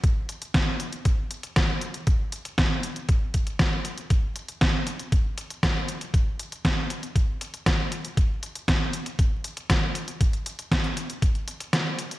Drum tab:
HH |x-xxx-xxx-xxx-xx|x-xxx-xxx-xxx-xx|x-xxx-xxx-xxx-xx|x-xxx-xxx-xxx-xx|
SD |----o-------o---|----o-------o---|----o-------o---|----o-------o---|
BD |o---o---o---o---|o---o---o-o-o---|o---o---o---o---|o---o---o---o---|

HH |x-xxx-xxx-xxx-xx|xxxxxxxxxxxxx-xx|
SD |----o-------o---|----o-------o---|
BD |o---o---o---o---|o---o---o-------|